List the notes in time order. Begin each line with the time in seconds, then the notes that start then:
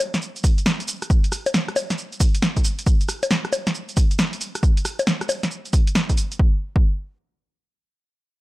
0.00 open hi-hat, high bongo, shaker
0.14 snare, closed hi-hat, shaker
0.22 shaker
0.36 closed hi-hat, shaker
0.44 kick, open hi-hat, shaker
0.58 closed hi-hat, shaker
0.66 snare, shaker
0.80 closed hi-hat, shaker
0.88 open hi-hat, shaker
1.02 cross-stick, closed hi-hat, shaker
1.10 kick, shaker
1.24 closed hi-hat, shaker
1.32 cross-stick, open hi-hat, shaker
1.46 closed hi-hat, high bongo, shaker
1.54 snare, shaker
1.68 cross-stick, closed hi-hat
1.76 open hi-hat, high bongo, shaker
1.90 snare, closed hi-hat, shaker
1.98 shaker
2.12 closed hi-hat, shaker
2.20 kick, open hi-hat, shaker
2.35 closed hi-hat, shaker
2.42 snare, shaker
2.57 kick, closed hi-hat, shaker
2.64 open hi-hat, shaker
2.79 closed hi-hat, shaker
2.86 kick, shaker
3.01 closed hi-hat, shaker
3.09 cross-stick, open hi-hat, shaker
3.23 closed hi-hat, high bongo, shaker
3.31 snare, shaker
3.45 cross-stick, closed hi-hat
3.53 open hi-hat, high bongo, shaker
3.67 snare, closed hi-hat, shaker
3.75 shaker
3.89 closed hi-hat, shaker
3.97 kick, open hi-hat, shaker
4.11 closed hi-hat, shaker
4.19 snare, shaker
4.33 closed hi-hat, shaker
4.41 open hi-hat, shaker
4.55 cross-stick, closed hi-hat, shaker
4.63 kick, shaker
4.77 closed hi-hat, shaker
4.85 cross-stick, open hi-hat, shaker
4.99 closed hi-hat, high bongo, shaker
5.07 snare, shaker
5.21 cross-stick, closed hi-hat, shaker
5.29 open hi-hat, high bongo, shaker
5.43 snare, closed hi-hat, shaker
5.51 shaker
5.65 closed hi-hat, shaker
5.73 kick, open hi-hat, shaker
5.87 closed hi-hat, shaker
5.95 snare, shaker
6.10 kick, closed hi-hat, shaker
6.17 open hi-hat, shaker
6.32 closed hi-hat, shaker
6.39 kick
6.76 kick